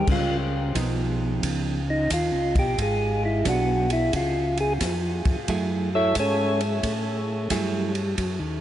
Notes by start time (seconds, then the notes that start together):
0.07 C#2, kick, crash
0.12 F4
0.75 B1 F3 B3 D#4, kick, hi-hat pedal, ride
1.43 C#2, kick, ride
1.90 D#4
2.10 D#2 F4, kick, hi-hat pedal, ride
2.32 C#2
2.55 B1 G4, kick, ride
2.78 G#1 G#4, kick, ride
3.25 E4
3.45 B1 F#3 B3 D4, kick, hi-hat pedal, ride
3.49 F#4
3.90 E4, ride
4.13 C#2 F4, kick, ride
4.57 G#4, ride
4.80 F2, kick, snare, hi-hat pedal, ride
5.25 F2, kick, ride
5.48 F#2 F#3 A3 E4 G#4, kick, ride
5.95 E4 A4 C#5 E5
6.15 G#2, kick, hi-hat pedal, ride
6.19 C#4 G#4 A4 C#5
6.61 ride
6.83 A2, kick, ride
7.50 G2 F#3 A3 E4 G#4, kick, hi-hat pedal, ride
7.95 ride
8.18 F#2, kick, ride
8.39 D#2